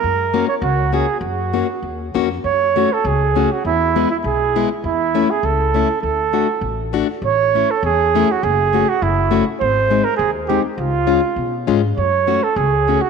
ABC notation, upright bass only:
X:1
M:2/4
L:1/8
Q:1/4=101
K:F#
V:1 name="Upright bass" clef=bass
F,,2 C,,2 | F,,2 D,, E,, | [K:F#m] F,,2 C,,2 | E,,2 B,,,2 |
E,,2 C,,2 | D,,2 A,,,2 | A,,,2 E,,2 | F,,,2 F,,,2 |
G,,,2 ^D,,2 | C,,2 B,, G,, | F,,2 C,,2 |]